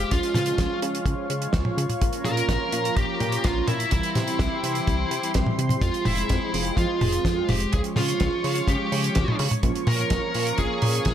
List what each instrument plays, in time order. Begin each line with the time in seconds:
Already playing: analog synth pad G#3 F5, lead electric guitar G4
0.11 analog synth bass C#2, analog polysynth F3 G#3 C#4 F4, analog synth pad F4 C#5, lead electric guitar F4, kick, closed hi-hat
0.23 closed hi-hat
0.34 analog synth bass C#3, snare, closed hi-hat, high tom
0.46 analog polysynth F3 G#3 C#4 F4, closed hi-hat
0.58 analog synth bass C#2, kick, snare, closed hi-hat
0.82 analog synth bass C#3, analog polysynth F3 G#3 C#4 F4, closed hi-hat
0.95 closed hi-hat
1.06 analog synth bass C#2, kick, closed hi-hat
1.30 analog synth bass C#3, analog polysynth F3 G#3 C#4 F4, closed hi-hat
1.42 closed hi-hat
1.53 analog synth bass C#2, kick, snare, closed hi-hat
1.65 analog polysynth F3 G#3 C#4 F4, high tom
1.77 analog synth bass C#3, closed hi-hat
1.89 closed hi-hat, high tom
2.01 analog synth bass A#1, analog polysynth F3 A#3 C#4 F4, analog synth pad A#4 A#5, kick, closed hi-hat
2.13 closed hi-hat
2.25 analog synth bass A#2, lead electric guitar A#4, closed hi-hat, high tom
2.37 analog polysynth F3 A#3 C#4 F4, closed hi-hat
2.49 analog synth bass A#1, kick, snare, closed hi-hat
2.72 analog synth bass A#2, analog polysynth F3 A#3 C#4 F4, closed hi-hat
2.85 closed hi-hat
2.96 analog synth bass A#1, lead electric guitar G4, kick, closed hi-hat
3.20 analog synth bass A#2, analog polysynth F3 A#3 C#4 F4, closed hi-hat, high tom
3.32 closed hi-hat
3.44 analog synth bass A#1, lead electric guitar F4, kick, snare, closed hi-hat
3.56 analog polysynth F3 A#3 C#4 F4
3.68 analog synth bass A#2, lead electric guitar E4, closed hi-hat, high tom
3.80 closed hi-hat
3.91 analog synth bass C2, analog polysynth E3 G3 C4 E4, lead electric guitar E4, analog synth pad G4 C5 E5 C6, kick, closed hi-hat
4.03 closed hi-hat
4.15 analog synth bass C3, snare, closed hi-hat, high tom
4.27 analog polysynth E3 G3 C4 E4, closed hi-hat
4.39 analog synth bass C2, kick, snare, closed hi-hat
4.63 analog synth bass C3, analog polysynth E3 G3 C4 E4, closed hi-hat
4.75 closed hi-hat
4.87 analog synth bass C2, kick, closed hi-hat
5.11 analog synth bass C3, closed hi-hat
5.22 analog polysynth E3 G3 C4 E4, closed hi-hat
5.34 analog synth bass C2, analog polysynth E3 G3 C4 E4, kick, snare, closed hi-hat
5.46 high tom
5.59 analog synth bass C3, closed hi-hat
5.69 analog polysynth E3 G3 C4 G4, closed hi-hat, high tom
5.81 analog synth bass F2, analog synth pad G#3, lead electric guitar F4, kick, closed hi-hat
5.94 closed hi-hat
6.05 analog synth bass F1, lead electric guitar E4, open hi-hat, high tom
6.18 analog polysynth F3 G#3 C4 G#4, closed hi-hat
6.29 analog synth bass F2, kick, snare, closed hi-hat
6.53 analog synth bass F1, analog polysynth F3 G#3 C4 F4, open hi-hat
6.65 closed hi-hat
6.77 analog synth bass F2, lead electric guitar F4, kick, closed hi-hat
7.01 analog synth bass F1, analog polysynth F3 G#3 C4 F4, open hi-hat, high tom
7.12 closed hi-hat
7.25 analog synth bass F2, kick, snare, closed hi-hat
7.37 analog polysynth F3 G#3 C4 F4
7.49 analog synth bass F1, lead electric guitar G4, open hi-hat, high tom
7.60 closed hi-hat
7.73 analog synth bass C#2, analog polysynth F3 G#3 C#4 F4, lead electric guitar G#4, analog synth pad C#5 C#6, kick, closed hi-hat
7.84 closed hi-hat
7.96 analog synth bass C#3, lead electric guitar F4, snare, open hi-hat, high tom
8.08 analog polysynth F3 G#3 C#4 F4, closed hi-hat
8.20 analog synth bass C#2, kick, snare, closed hi-hat
8.44 analog synth bass C#3, analog polysynth F3 G#3 C#4 F4, open hi-hat
8.55 closed hi-hat
8.68 analog synth bass C#2, lead electric guitar G4, kick, closed hi-hat
8.92 analog synth bass C#3, analog polysynth F3 G#3 C#4 F4, open hi-hat
9.04 closed hi-hat
9.15 analog synth bass C#2, kick, snare, closed hi-hat
9.28 analog polysynth F3 G#3 C#4 F4, high tom
9.39 analog synth bass C#3, open hi-hat
9.51 closed hi-hat, high tom
9.63 analog synth bass A#1, analog polysynth F3 A#3 C#4 F4, analog synth pad A#4 C#6, kick, closed hi-hat
9.75 closed hi-hat
9.87 analog synth bass A#2, lead electric guitar A#4, open hi-hat, high tom
9.99 analog polysynth F3 A#3 C#4 F4, closed hi-hat
10.10 analog synth bass A#1, kick, snare, closed hi-hat
10.34 analog synth bass A#2, analog polysynth F3 A#3 C#4 F4, open hi-hat
10.47 closed hi-hat
10.58 analog synth bass A#1, lead electric guitar G#4, kick, closed hi-hat
10.82 analog synth bass A#2, analog polysynth F3 A#3 C#4 F4, open hi-hat, high tom
10.95 closed hi-hat
11.05 analog synth bass A#1, kick, snare, closed hi-hat